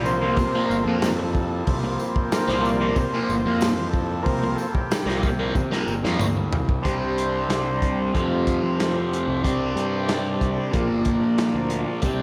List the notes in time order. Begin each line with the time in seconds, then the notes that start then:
Already playing: C2 G2 A#2 C3 F3
0.03 F3 A#3 C4 C5, tambourine
0.21 A#2 F3 A#3
0.36 C3, muted distorted electric guitar stroke, kick, open hi-hat, tambourine
0.44 C2
0.54 A#2 F3 A#3
0.66 A#4
0.70 G1, tambourine
0.84 F2 F3 A#3 A4
0.88 A#2
1.01 G4, snare, open hi-hat, tambourine
1.07 G2
1.16 A4, muted distorted electric guitar stroke
1.35 kick, tambourine
1.64 C2 F3 A#3 C4, kick, open hi-hat
1.69 C3
1.83 muted distorted electric guitar stroke
1.99 tambourine
2.16 kick
2.31 C3 A#4, muted distorted electric guitar stroke, snare, open hi-hat, tambourine
2.47 C2 A#2 F3 A#3 C5, snare
2.61 F3 A#3 C4 D5
2.65 tambourine
2.81 A#2 F3 A#3
2.94 C2 C3 C5, kick, open hi-hat, tambourine
2.98 muted distorted electric guitar stroke
3.14 A#2 F3 A#3
3.30 G1, tambourine
3.46 F2 A#2 F3 A#3
3.56 G2
3.61 snare, open hi-hat, tambourine
3.79 muted distorted electric guitar stroke
3.90 A4, kick
3.94 tambourine
4.16 C3
4.22 C2 F3 A#3 C4 A#4, kick, tambourine
4.26 open hi-hat
4.43 muted distorted electric guitar stroke
4.55 A4, tambourine
4.73 G4, kick
4.80 C3
4.91 muted distorted electric guitar stroke, snare, open hi-hat, tambourine
5.06 C2 A#2 F3 A#3, snare
5.23 kick, tambourine
5.39 C2 A#2 F3 A#3
5.54 C3, muted distorted electric guitar stroke, kick, high tom, tambourine
5.71 A#2 F3 A#3, snare
5.87 G1, tambourine
6.03 F2 G2 A#2 F3 A#3, snare
6.19 D2, mid tom, tambourine
6.36 muted distorted electric guitar stroke
6.53 C2, floor tom, tambourine
6.67 C3, kick
6.82 C2 C3 G3 C4 D4 C5, kick, closed hi-hat
7.18 closed hi-hat
7.49 C2, snare, closed hi-hat
7.82 kick, closed hi-hat
8.14 F2 C3 F3 A3 F4 G4, kick, closed hi-hat
8.47 kick, closed hi-hat
8.63 F3
8.80 snare, closed hi-hat
9.13 closed hi-hat
9.28 C2
9.43 C2 C3 G3 C4 D4 D5, kick, closed hi-hat
9.76 G2, closed hi-hat
10.09 snare, closed hi-hat
10.41 C2, kick, closed hi-hat
10.72 A#1 A#2 F3 A#3 F4, kick, closed hi-hat
10.89 G1
11.05 kick, closed hi-hat
11.38 snare, closed hi-hat
11.55 D2
11.70 closed hi-hat
12.02 C2 C3 G3 C4 D4 G4, kick, closed hi-hat, tambourine